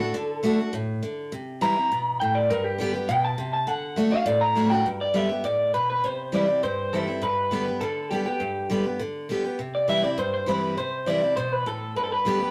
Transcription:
Already playing: A2 A4
0.00 D4 F#4
0.14 D3
0.43 D3 A3 D4 F#4
0.59 D4 F#4
0.73 A2
1.03 D3
1.32 C3
1.61 E3 G3 C4 E4 A#5
1.76 C4 E4
1.92 B2
2.20 A2 G5
2.35 D5
2.50 G2 A#4
2.64 G4
2.78 D3 G3 B3 G4
2.93 B3 G4
3.09 B2 G5
3.25 A5
3.38 C3
3.53 A5
3.67 D3 F#5
3.96 D3 A3 D4 F#4
4.10 D4 F#4 F5
4.26 A2 D5
4.41 A#5
4.55 D3 A3 D4 F#4
4.70 D4 F#4 G5
4.86 G2
5.01 D5
5.14 D3 G3 B3 G4 E5
5.29 B3 G4
5.44 A2 D5
5.74 B2 B4
5.90 B4
6.04 C3 C5
6.32 E3 G3 C4 E4 D5
6.47 C4 E4
6.63 G2 C5
6.93 E3 G3 C4 E4 A4
7.07 C4 E4
7.22 G2 B4
7.51 D3 G3 B3 G4
7.66 B3 G4
7.81 D3 A4
8.10 D3 G3 B3 G4
8.25 B3 G4
8.40 G2
8.70 D3 G3 B3 G4
8.84 B3 G4
8.99 D3
9.29 D3 G3 B3 G4
9.44 B3 G4
9.59 C3
9.75 D5
9.88 E3 G3 C4 E4 E5
10.02 C4 E4 D5
10.18 G2 C5
10.34 C5
10.46 E3 G3 C4 E4 B4
10.77 C3 C5
11.06 E3 G3 C4 E4 D5
11.22 C4 E4
11.36 B2 C5
11.52 B4
11.66 A2 A4
11.96 G2 B4
12.04 A4
12.12 B4
12.25 D3 G3 B3 G4
12.39 B3 G4

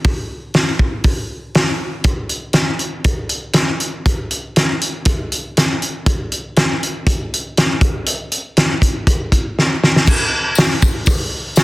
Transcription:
0.04 kick, open hi-hat
0.54 snare, open hi-hat
0.79 kick
1.04 kick, open hi-hat
1.54 snare, open hi-hat
2.04 kick, closed hi-hat
2.29 closed hi-hat
2.53 snare, closed hi-hat
2.79 closed hi-hat
3.04 kick, closed hi-hat
3.29 closed hi-hat
3.53 snare, closed hi-hat
3.80 closed hi-hat
4.05 kick, closed hi-hat
4.31 closed hi-hat
4.56 snare, closed hi-hat
4.81 closed hi-hat
5.05 kick, closed hi-hat
5.32 closed hi-hat
5.57 snare, closed hi-hat
5.82 closed hi-hat
6.06 kick, closed hi-hat
6.32 closed hi-hat
6.56 snare, closed hi-hat
6.83 closed hi-hat
7.07 kick, closed hi-hat
7.34 closed hi-hat
7.57 snare, closed hi-hat
7.81 kick, closed hi-hat
8.06 closed hi-hat
8.32 closed hi-hat
8.57 snare, closed hi-hat
8.82 kick, closed hi-hat
9.07 kick, closed hi-hat
9.32 kick, closed hi-hat
9.59 snare
9.84 snare
9.96 snare
10.06 kick, crash, tambourine
10.55 snare, open hi-hat, tambourine
10.82 kick, tambourine
11.06 kick, open hi-hat, tambourine
11.56 snare, open hi-hat, tambourine

